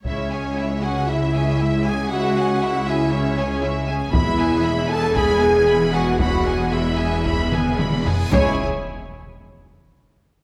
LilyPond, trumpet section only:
\new Staff \with { instrumentName = "Trumpet section" } { \time 4/4 \key cis \minor \tempo 4 = 116 cis'4. fis'8 e'4. gis'8 | fis'4. e'8 cis'4. r8 | e'4. a'8 gis'4. fis'8 | fis'4 e'2 r4 |
cis''8 r2. r8 | }